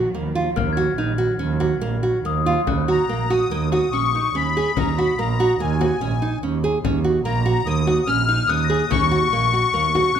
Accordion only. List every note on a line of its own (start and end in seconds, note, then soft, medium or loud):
2.90 3.33 A#5 medium
3.30 3.69 D#6 medium
3.72 3.93 D#6 loud
3.92 4.36 C#6 loud
4.35 4.78 B5 loud
4.78 4.99 A#5 medium
4.97 5.19 B5 medium
5.18 5.61 A#5 medium
5.60 6.39 G#5 medium
7.25 7.67 A#5 medium
7.66 8.09 D#6 loud
8.07 8.50 F6 loud
8.47 8.91 D#6 loud
8.91 10.20 C#6 loud